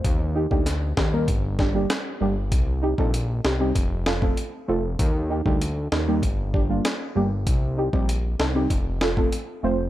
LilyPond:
<<
  \new Staff \with { instrumentName = "Synth stab" } { \time 4/4 \key g \minor \tempo 4 = 97 r8 <ees' g'>16 <g bes ees' g'>16 r8 <ees' g'>16 <g bes ees' bes'>16 r8 <d' g'>16 <g bes d' g'>16 r8 <g bes d' g'>16 r16 | r8 <ees' g'>16 <g c' ees' a'>16 r8 <ees' g'>16 <g c' ees' g'>16 r8 <f' a'>16 <a c' f' a'>16 r8 <a c' f' a'>16 r16 | r8 <ees' g'>16 <g bes ees' g'>16 r8 <ees' bes'>16 <g bes ees' g'>16 r8 <d' g'>16 <g bes d' f'>16 r8 <g bes d' g'>16 r16 | r8 <ees' g'>16 <g c' ees' g'>16 r8 <ees' a'>16 <g c' ees' g'>16 r8 <f' a'>16 <a c' f' a'>16 r8 <a c' f' c''>16 r16 | }
  \new Staff \with { instrumentName = "Analog synth bass" } { \clef bass \time 4/4 \key g \minor ees,8. d,8. ees,8 g,,4 r8 g,,8 | c,8. bes,,8. c,8 f,,4 r8 f,,8 | ees,8. d,8. ees,8 g,,4 r8 g,,8 | c,8. bes,,8. c,8 f,,4 r8 f,,8 | }
  \new DrumStaff \with { instrumentName = "Drums" } \drummode { \time 4/4 <hh bd>8. bd16 <hh sn>8 <bd sn>8 <hh bd>8 <bd sn>8 <hh ss sn>4 | <hh bd>8. bd16 hh8 sn8 <hh bd>8 sn16 bd16 hh4 | <hh bd>8. bd16 hh8 sn8 <hh bd>8 bd8 <hh sn>4 | <hh bd>8. bd16 hh8 sn8 <hh bd>8 sn16 bd16 hh4 | }
>>